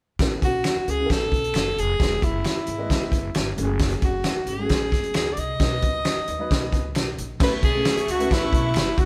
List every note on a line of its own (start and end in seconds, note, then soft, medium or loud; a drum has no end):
0.19 0.38 A1 medium
0.19 0.54 E3 medium
0.19 0.54 B3 medium
0.19 0.54 C#4 medium
0.19 0.55 A4 medium
0.19 kick loud
0.19 snare loud
0.19 closed hi-hat medium
0.42 0.61 B1 medium
0.42 0.91 F#4 medium
0.42 kick medium
0.42 closed hi-hat medium
0.64 finger snap loud
0.64 snare medium
0.64 closed hi-hat medium
0.76 muted upright bass stroke soft
0.87 1.06 C#2 medium
0.87 0.93 C#4 soft
0.87 1.13 G#4 medium
0.87 0.93 A4 soft
0.87 closed hi-hat medium
0.99 1.44 E3 medium
0.99 1.44 B3 medium
0.99 1.44 C#4 medium
0.99 1.05 G#4 medium
1.06 1.29 A1 medium
1.06 1.48 A4 medium
1.10 1.80 A4 loud
1.10 kick medium
1.10 snare loud
1.10 closed hi-hat medium
1.32 1.51 B1 medium
1.32 kick medium
1.32 closed hi-hat medium
1.44 closed hi-hat soft
1.54 1.74 F#1 medium
1.54 finger snap loud
1.54 snare loud
1.54 closed hi-hat medium
1.77 1.96 F1 medium
1.77 2.25 G#4 loud
1.77 closed hi-hat medium
1.99 2.19 E1 medium
1.99 2.33 E3 medium
1.99 2.34 G#3 medium
1.99 2.34 B3 medium
1.99 2.05 F#4 medium
1.99 kick loud
1.99 snare loud
1.99 closed hi-hat medium
2.05 2.37 G#4 medium
2.22 2.41 F#1 medium
2.22 3.58 E4 medium
2.22 kick medium
2.22 closed hi-hat medium
2.45 finger snap loud
2.45 snare medium
2.45 closed hi-hat medium
2.56 muted upright bass stroke soft
2.67 2.90 G#1 medium
2.67 2.73 B3 soft
2.67 2.73 G#4 soft
2.67 closed hi-hat medium
2.78 3.24 E3 medium
2.78 3.24 G#3 medium
2.78 3.24 B3 medium
2.78 3.24 D#5 medium
2.90 3.09 E1 medium
2.90 kick medium
2.90 snare loud
2.90 closed hi-hat medium
3.12 3.31 F#1 medium
3.12 kick medium
3.12 snare soft
3.12 closed hi-hat medium
3.34 3.54 G1 medium
3.34 finger snap loud
3.34 snare loud
3.34 closed hi-hat medium
3.57 3.96 F#1 loud
3.57 4.29 F#3 medium
3.57 4.30 A3 medium
3.57 4.29 C#4 medium
3.57 3.63 F#4 medium
3.57 closed hi-hat medium
3.64 4.33 G#4 loud
3.79 kick loud
3.79 snare loud
3.79 closed hi-hat medium
3.90 closed hi-hat medium
4.02 4.21 F#1 medium
4.02 4.50 F#4 medium
4.02 kick loud
4.02 closed hi-hat medium
4.24 finger snap loud
4.24 snare medium
4.24 closed hi-hat medium
4.36 muted upright bass stroke soft
4.46 4.66 G#1 medium
4.46 4.53 C#4 soft
4.46 5.16 G#4 medium
4.46 4.54 G#4 soft
4.46 closed hi-hat medium
4.58 5.04 F#3 medium
4.58 5.04 A3 medium
4.58 5.05 C#4 medium
4.58 4.65 F#4 medium
4.65 5.08 G#4 medium
4.65 closed hi-hat medium
4.70 4.89 A1 medium
4.70 kick medium
4.70 snare loud
4.92 5.11 F#1 medium
4.92 kick medium
4.92 snare soft
4.92 closed hi-hat medium
5.03 closed hi-hat soft
5.14 5.34 C#2 medium
5.14 5.34 G#4 medium
5.14 finger snap loud
5.14 snare loud
5.14 closed hi-hat medium
5.33 5.40 D5 medium
5.33 closed hi-hat medium
5.37 5.57 C2 medium
5.37 6.96 D#5 loud
5.59 5.79 B1 medium
5.59 5.94 F#3 medium
5.59 5.95 B3 medium
5.59 5.95 D#4 medium
5.59 5.66 A#4 medium
5.59 kick loud
5.59 snare loud
5.59 closed hi-hat medium
5.67 5.98 B4 medium
5.82 6.02 C#2 medium
5.82 kick medium
5.82 closed hi-hat medium
6.05 finger snap loud
6.05 snare loud
6.05 closed hi-hat medium
6.17 muted upright bass stroke soft
6.27 6.47 D#2 medium
6.27 6.34 D#4 medium
6.27 6.35 B4 medium
6.27 closed hi-hat medium
6.39 6.85 F#3 medium
6.39 6.85 B3 medium
6.39 6.85 D#4 medium
6.39 6.85 B4 loud
6.51 6.70 B1 medium
6.51 kick medium
6.51 snare loud
6.51 closed hi-hat medium
6.72 6.96 C#2 medium
6.72 kick medium
6.72 snare soft
6.72 closed hi-hat medium
6.95 7.15 B1 medium
6.95 finger snap loud
6.95 snare loud
6.95 closed hi-hat medium
7.18 7.37 A#1 medium
7.18 closed hi-hat medium
7.40 7.59 A1 loud
7.40 9.05 A3 loud
7.40 7.58 A3 medium
7.40 7.58 B3 medium
7.40 7.58 C#4 medium
7.40 7.58 E4 medium
7.40 7.59 B4 medium
7.40 7.53 B4 loud
7.40 9.05 E5 loud
7.40 9.05 C#6 loud
7.40 7.52 B6 loud
7.40 kick loud
7.40 snare loud
7.40 crash loud
7.62 7.82 B1 medium
7.62 8.12 G#4 loud
7.62 8.06 G#6 medium
7.62 kick medium
7.62 closed hi-hat medium
7.74 7.97 A3 medium
7.74 7.97 B3 medium
7.74 7.97 C#4 medium
7.74 7.97 E4 medium
7.74 7.97 G#4 medium
7.85 finger snap loud
7.85 snare loud
7.85 closed hi-hat medium
7.97 muted upright bass stroke soft
7.97 closed hi-hat medium
8.07 8.27 C#2 medium
8.07 8.34 F#4 loud
8.07 closed hi-hat medium
8.12 8.32 F#6 medium
8.18 8.64 A3 medium
8.18 8.65 B3 medium
8.18 8.65 C#4 medium
8.18 8.65 E4 medium
8.18 8.65 B4 medium
8.18 closed hi-hat soft
8.31 8.50 A1 medium
8.31 9.00 E4 loud
8.31 9.00 E6 medium
8.31 kick loud
8.31 snare loud
8.31 closed hi-hat medium
8.53 8.72 B1 loud
8.53 kick medium
8.53 closed hi-hat medium
8.74 8.94 F#1 medium
8.74 finger snap loud
8.74 snare loud
8.74 closed hi-hat medium
8.98 9.05 F1 medium
8.98 9.05 F#4 medium
8.98 9.05 F#6 medium
8.98 kick medium
8.98 closed hi-hat medium